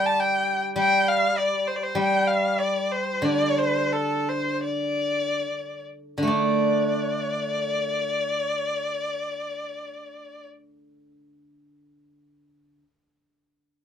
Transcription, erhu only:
0.06 0.21 A5 medium
0.20 0.64 G5 medium
0.79 1.10 G5 medium
1.08 1.39 F5 medium
1.38 1.69 D5 medium
1.68 1.78 C5 medium
1.76 1.84 D5 medium
1.83 1.97 C5 medium
1.99 2.29 G5 medium
2.27 2.60 F5 medium
2.59 2.93 D5 medium
2.92 3.26 C5 medium
3.24 3.60 D5 medium
3.59 3.94 C5 medium
3.93 4.31 A4 medium
4.29 4.64 C5 medium
4.65 5.83 D5 medium
6.31 10.46 D5 medium

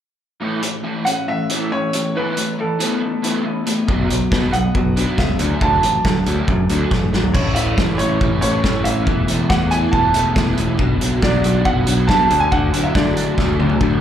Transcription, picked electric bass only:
3.89 4.03 B1 medium
4.10 4.24 B1 medium
4.32 4.46 B2 medium
4.53 4.67 B1 medium
4.75 5.03 B1 medium
5.18 5.32 C#2 medium
5.39 5.54 D2 medium
5.62 5.76 D2 medium
5.83 5.97 A1 medium
6.05 6.19 D3 medium
6.27 6.41 D2 medium
6.48 6.62 F#2 medium
6.70 6.84 D2 medium
6.92 7.05 A1 medium
7.13 7.34 G#1 medium
7.34 7.53 A1 medium
7.56 7.74 A1 medium
7.78 7.96 A1 medium
7.99 8.17 A1 medium
8.21 8.39 A1 medium
8.43 8.61 A1 medium
8.64 8.82 A2 medium
8.86 9.04 A1 medium
9.07 9.25 E1 medium
9.30 9.47 E1 medium
9.50 9.86 E2 medium
9.93 10.11 E1 medium
10.15 10.33 E1 medium
10.36 10.54 E1 medium
10.58 10.76 E1 medium
10.79 10.97 B1 medium
11.01 11.19 B1 medium
11.23 11.41 B1 medium
11.44 11.62 B1 medium
11.66 11.84 B1 medium
11.87 12.05 B1 medium
12.09 12.27 B2 medium
12.31 12.49 D2 medium
12.52 12.70 D2 medium
12.74 12.92 D2 medium
12.95 13.32 D3 medium
13.38 13.56 D2 medium
13.59 13.77 D2 medium
13.81 13.99 D2 medium

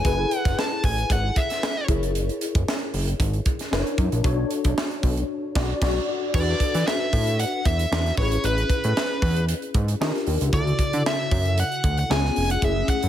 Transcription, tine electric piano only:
0.04 1.84 E4 medium
0.04 1.85 G#4 medium
0.04 1.85 A4 medium
0.04 1.85 B4 medium
1.88 3.68 E4 medium
1.88 3.68 G#4 medium
1.88 3.69 A#4 medium
1.88 3.69 C#5 medium
3.71 4.21 D4 medium
3.71 4.24 E4 medium
3.71 4.24 A#4 medium
3.71 3.79 B4 medium
3.79 4.24 C#5 medium
4.23 5.26 D4 medium
4.23 5.27 F#4 medium
4.23 5.27 A4 medium
4.23 5.27 C#5 medium
5.55 5.74 F#4 loud
5.55 5.73 D5 medium
5.82 6.00 F#4 medium
5.82 6.00 D5 medium
6.33 8.13 D4 medium
6.33 8.13 F#4 medium
6.33 8.14 A4 medium
6.33 8.14 B4 medium
8.17 9.96 C#4 medium
8.17 9.97 E4 medium
8.17 9.97 G#4 medium
8.17 9.98 B4 medium
10.00 10.53 D4 medium
10.00 10.53 F4 medium
10.00 10.53 G4 medium
10.00 10.53 A#4 medium
10.52 12.06 C#3 medium
10.52 12.07 E4 medium
10.52 12.07 F#4 medium
10.52 12.07 A4 medium
12.09 12.62 B3 medium
12.09 12.61 C#4 medium
12.09 12.62 F4 medium
12.09 12.63 G#4 medium
12.62 13.09 A3 medium
12.62 13.09 C#4 medium
12.62 13.09 E4 medium
12.62 13.09 G#4 medium

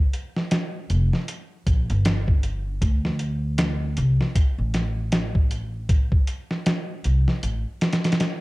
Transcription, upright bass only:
0.90 1.10 F1 medium
1.67 1.87 A#1 medium
1.90 2.79 G1 medium
2.82 3.94 D2 medium
3.98 4.17 C2 medium
4.58 6.08 A1 medium
7.05 7.25 C2 medium
7.43 7.63 A1 medium

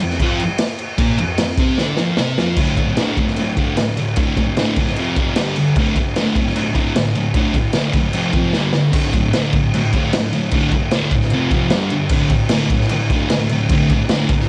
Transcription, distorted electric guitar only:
0.02 0.17 F2 medium
0.21 0.40 F2 loud
0.21 0.41 F3 loud
0.98 1.18 A#2 loud
0.98 1.19 A#3 loud
1.19 1.35 F2 medium
1.40 1.56 F2 medium
1.59 1.79 C3 loud
1.59 1.79 C4 loud
1.80 1.99 D3 loud
1.80 1.99 D4 loud
1.98 2.18 F2 loud
1.98 2.19 F3 loud
2.19 2.38 C3 medium
2.19 2.39 C4 loud
2.39 2.58 F2 medium
2.39 2.59 F3 medium
2.59 2.77 D2 loud
2.59 2.77 A2 loud
2.59 2.78 D3 loud
2.78 2.97 D2 medium
2.78 2.97 A2 medium
2.98 3.17 D2 loud
2.98 3.18 A2 medium
2.98 3.18 D3 loud
3.18 3.36 D2 medium
3.18 3.37 A2 medium
3.39 3.56 D2 medium
3.39 3.57 A2 loud
3.57 3.75 D2 loud
3.57 3.76 A2 loud
3.57 3.78 D3 loud
3.77 3.95 D2 medium
3.77 3.96 A2 medium
3.98 4.16 D2 medium
3.98 4.16 A2 medium
4.17 4.36 D2 medium
4.17 4.37 A2 medium
4.17 4.37 D3 loud
4.37 4.56 D2 medium
4.37 4.56 A2 medium
4.58 4.77 D2 medium
4.58 4.77 A2 loud
4.58 4.77 D3 loud
4.78 4.96 D2 medium
4.78 4.96 A2 medium
4.99 5.17 F2 loud
4.99 5.17 C3 medium
4.99 5.18 F3 loud
5.18 5.37 F2 loud
5.18 5.37 C3 medium
5.18 5.37 F3 loud
5.38 5.56 G2 loud
5.38 5.56 D3 medium
5.38 5.57 G3 loud
5.57 5.75 G2 medium
5.57 5.75 D3 medium
5.78 5.96 D2 medium
5.78 5.96 A2 loud
5.78 5.97 D3 loud
5.97 6.15 D2 medium
5.97 6.15 A2 medium
6.17 6.36 D2 medium
6.17 6.36 A2 loud
6.17 6.36 D3 loud
6.37 6.55 D2 medium
6.37 6.55 A2 medium
6.56 6.72 D2 medium
6.56 6.73 A2 medium
6.74 6.94 D2 loud
6.74 6.94 A2 loud
6.74 6.94 D3 loud
6.95 7.14 D2 medium
6.95 7.14 A2 medium
7.15 7.34 D2 medium
7.15 7.34 A2 medium
7.35 7.54 D2 medium
7.35 7.54 A2 loud
7.35 7.55 D3 loud
7.55 7.73 D2 medium
7.55 7.73 A2 medium
7.74 7.94 D2 loud
7.74 7.94 A2 loud
7.74 7.94 D3 loud
7.96 8.13 D2 medium
7.96 8.14 A2 medium
8.15 8.34 F2 medium
8.15 8.34 C3 loud
8.15 8.35 F3 loud
8.35 8.54 F2 medium
8.35 8.54 C3 loud
8.35 8.54 F3 loud
8.55 8.73 G2 loud
8.55 8.74 D3 loud
8.55 8.75 G3 medium
8.74 8.92 G2 medium
8.74 8.93 D3 medium
8.92 9.12 D2 loud
8.92 9.13 A2 medium
8.92 9.13 D3 loud
9.14 9.32 D2 medium
9.14 9.32 A2 medium
9.34 9.53 D2 medium
9.34 9.53 A2 medium
9.34 9.54 D3 loud
9.54 9.72 D2 medium
9.54 9.72 A2 medium
9.75 9.92 D2 medium
9.75 9.92 A2 medium
9.94 10.12 D2 loud
9.94 10.13 A2 loud
9.94 10.13 D3 loud
10.14 10.31 D2 medium
10.14 10.31 A2 medium
10.32 10.51 D2 medium
10.32 10.51 A2 medium
10.53 10.72 D2 loud
10.53 10.72 A2 loud
10.53 10.73 D3 loud
10.74 10.92 D2 medium
10.74 10.92 A2 medium
10.93 11.12 D2 medium
10.93 11.13 A2 loud
10.93 11.13 D3 loud
11.14 11.31 D2 medium
11.14 11.31 A2 medium
11.33 11.52 F2 loud
11.33 11.52 C3 loud
11.33 11.52 F3 loud
11.53 11.71 F2 medium
11.53 11.72 C3 loud
11.53 11.72 F3 loud
11.72 11.91 G2 loud
11.72 11.91 D3 loud
11.72 11.92 G3 loud
11.92 12.10 G2 medium
11.92 12.10 D3 medium
12.12 12.31 D2 medium
12.12 12.32 A2 loud
12.12 12.32 D3 loud
12.32 12.50 D2 medium
12.32 12.50 A2 medium
12.51 12.70 D2 medium
12.51 12.71 A2 loud
12.51 12.71 D3 loud
12.73 12.90 D2 medium
12.73 12.90 A2 medium
12.92 13.10 D2 medium
12.92 13.10 A2 loud
13.12 13.30 D2 loud
13.12 13.30 A2 loud
13.12 13.31 D3 loud
13.31 13.49 D2 medium
13.31 13.49 A2 medium
13.52 13.69 D2 medium
13.52 13.70 A2 medium
13.72 13.90 D2 loud
13.72 13.91 A2 loud
13.72 13.91 D3 loud
13.93 14.09 D2 medium
13.93 14.10 A2 medium
14.11 14.30 D2 loud
14.11 14.30 A2 loud
14.11 14.31 D3 loud
14.32 14.49 D2 medium
14.32 14.49 A2 medium

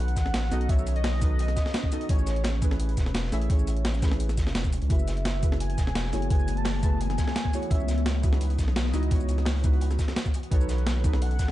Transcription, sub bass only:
0.00 0.15 B1 loud
0.16 0.50 A1 loud
0.51 0.67 B1 medium
0.69 1.55 B1 loud
2.09 2.96 A1 loud
2.97 3.31 E1 loud
3.32 3.48 A1 loud
3.50 4.48 A1 loud
4.47 4.80 E1 loud
4.82 4.89 C#2 medium
4.90 5.77 F#1 loud
5.78 6.12 E1 loud
6.13 6.29 F#1 medium
6.31 7.17 F#1 loud
7.71 8.57 C#2 loud
8.59 8.92 B1 loud
8.94 9.10 C#2 medium
9.11 9.98 C#2 loud
10.51 11.38 B1 loud
11.39 11.52 A1 loud

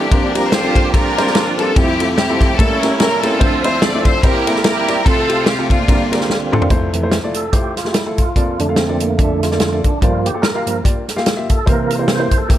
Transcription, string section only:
0.00 0.72 A#3 medium
0.00 0.72 D4 medium
0.00 0.34 G4 medium
0.32 0.51 A#4 loud
0.50 0.93 F4 medium
0.50 1.31 G4 medium
0.50 0.92 C5 loud
0.92 1.73 D4 medium
0.92 1.73 F4 medium
0.92 1.54 A#4 loud
1.58 1.74 A4 medium
1.75 2.16 C4 medium
1.75 2.16 E4 medium
1.75 2.13 G4 loud
2.15 2.55 C4 medium
2.15 2.55 E4 medium
2.15 2.54 G4 medium
2.57 3.37 C#4 medium
2.57 3.37 E4 medium
2.57 2.81 A4 loud
2.80 2.95 A#4 medium
2.96 3.20 A#4 loud
3.20 4.01 C4 medium
3.20 4.01 F4 medium
3.20 3.63 A4 medium
3.62 3.79 C5 medium
3.81 4.05 D5 loud
4.05 4.21 C5 medium
4.22 4.64 E4 medium
4.22 4.64 G4 medium
4.22 4.63 A#4 loud
4.64 5.03 E4 medium
4.64 5.03 G4 medium
4.64 5.02 A#4 loud
5.05 5.84 C4 medium
5.05 5.69 F4 medium
5.05 5.46 A4 loud
5.46 5.70 G4 medium
5.70 6.49 A#3 medium
5.70 6.49 D4 medium
5.70 6.25 F4 medium

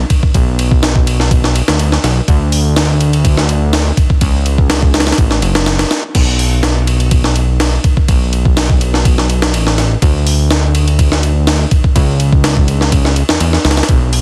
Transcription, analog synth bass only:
0.34 1.62 B1 loud
1.68 1.98 D2 loud
2.04 2.21 B1 medium
2.28 3.92 D2 loud
4.21 5.13 C#2 loud
5.18 5.41 A1 loud
5.42 5.85 F#1 loud
6.15 7.79 B1 loud
8.08 9.55 B1 loud
9.53 9.96 A1 medium
10.02 11.66 D2 loud
11.96 13.23 C#2 loud
13.29 13.38 E2 soft
13.40 13.58 E2 loud
13.65 13.82 C#2 loud
13.89 14.21 B1 loud

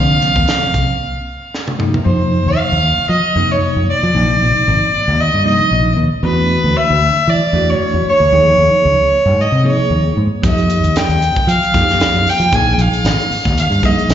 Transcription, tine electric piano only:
0.00 0.14 C3 medium
0.00 0.14 F3 medium
0.00 0.14 A#3 medium
0.00 0.15 C4 medium
0.21 0.96 C3 medium
0.21 0.96 F3 medium
0.21 0.96 A#3 medium
0.21 0.97 C4 medium
1.79 1.98 C3 medium
1.79 1.98 F3 medium
1.79 1.98 A#3 medium
1.79 1.98 D#4 medium
2.04 2.79 C3 medium
2.04 2.79 F3 medium
2.04 2.79 A#3 medium
2.04 2.80 D#4 medium
3.36 3.92 C3 medium
3.36 3.92 F3 medium
3.36 3.92 A#3 medium
3.36 3.93 D#4 medium
4.13 4.89 C3 medium
4.13 4.89 F3 medium
4.13 4.89 A#3 medium
4.13 4.89 D#4 medium
5.44 6.01 C3 medium
5.44 6.01 F3 medium
5.44 6.01 A#3 medium
5.44 6.02 D#4 medium
6.23 6.98 E3 medium
6.23 6.98 A3 medium
6.23 6.99 D4 medium
6.23 6.99 F#4 medium
7.53 8.10 E3 medium
7.53 8.10 A3 medium
7.53 8.11 D4 medium
7.53 8.11 F#4 medium
8.32 9.08 F3 medium
8.32 9.08 A#3 medium
8.32 9.08 D#4 medium
8.32 9.08 G#4 medium
9.64 10.20 F3 medium
9.64 10.20 A#3 medium
9.64 10.20 D#4 medium
9.64 10.21 G#4 medium
10.42 11.17 F3 medium
10.42 11.17 A#3 medium
10.42 11.18 D#4 medium
10.42 11.18 G4 medium
11.74 12.30 F3 medium
11.74 12.30 A#3 medium
11.74 12.30 D#4 medium
11.74 12.30 G4 medium
12.52 13.26 F3 medium
12.52 13.27 A#3 medium
12.52 13.27 D#4 medium
12.52 13.27 G#4 medium
13.82 14.14 F3 medium
13.82 14.14 A#3 medium
13.82 14.14 D#4 medium
13.82 14.14 G#4 medium

